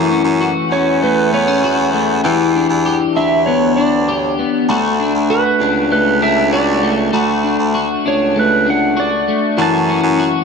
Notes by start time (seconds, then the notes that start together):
Already playing: F#2 E3 A3 F#4
0.11 C#4
0.24 F#2
0.41 F#4
0.70 E2 C#4 C#5
1.02 A3 B4
1.33 B3 C#5
1.48 C#4
1.64 F#4
1.94 A3
2.23 E2 E3 G4
2.56 D4
2.69 E2
2.86 G4
3.16 D2 D4 E5
3.46 B3 C#5
3.76 D4 D5
4.08 G4
4.17 C#5
4.39 B3
4.68 D2 A3 F#4
5.00 D4
5.14 D2
5.30 F#4 B4
5.60 C#2 D4
5.91 A3 B4
6.22 D4 E5
6.53 F#4 D5
6.83 A3
7.13 D2 A3 F#4
7.44 D4
7.59 D2
7.75 F#4
8.05 C#2 D4 C#5
8.36 A3 B4
8.67 D4 F#5
8.97 F#4 D5
9.28 A3
9.58 F#2 E3 F#4
9.62 A5
9.89 C#4
10.03 F#2
10.19 F#4